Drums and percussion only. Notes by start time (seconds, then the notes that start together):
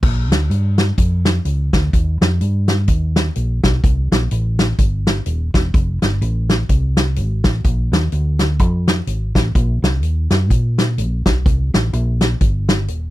0.03 kick, crash
0.32 snare, closed hi-hat
0.51 closed hi-hat
0.78 snare, closed hi-hat
0.98 kick, closed hi-hat
1.25 snare, closed hi-hat
1.45 closed hi-hat
1.73 kick, snare, closed hi-hat
1.93 kick, closed hi-hat
2.22 snare, closed hi-hat
2.41 closed hi-hat
2.68 snare, closed hi-hat
2.88 kick, closed hi-hat
3.16 snare, closed hi-hat
3.35 closed hi-hat
3.64 kick, snare, closed hi-hat
3.84 kick, closed hi-hat
4.12 snare, closed hi-hat
4.31 closed hi-hat
4.59 snare, closed hi-hat
4.78 kick, closed hi-hat
5.07 snare, closed hi-hat
5.26 closed hi-hat
5.54 kick, snare, closed hi-hat
5.74 kick, closed hi-hat
6.02 snare, closed hi-hat
6.22 closed hi-hat
6.49 snare, closed hi-hat
6.69 kick, closed hi-hat
6.97 snare, closed hi-hat
7.16 closed hi-hat
7.44 kick, snare, closed hi-hat
7.64 kick, closed hi-hat
7.93 snare, closed hi-hat
8.12 closed hi-hat
8.39 snare, closed hi-hat
8.59 kick, closed hi-hat
8.88 snare, closed hi-hat
9.07 closed hi-hat
9.35 kick, snare, closed hi-hat
9.55 kick, closed hi-hat
9.84 snare, closed hi-hat
10.03 closed hi-hat
10.30 snare, closed hi-hat
10.50 kick, closed hi-hat
10.78 snare, closed hi-hat
10.98 closed hi-hat
11.26 kick, snare, closed hi-hat
11.46 kick, closed hi-hat
11.74 snare, closed hi-hat
11.93 closed hi-hat
12.21 snare, closed hi-hat
12.41 kick, closed hi-hat
12.69 snare, closed hi-hat
12.88 closed hi-hat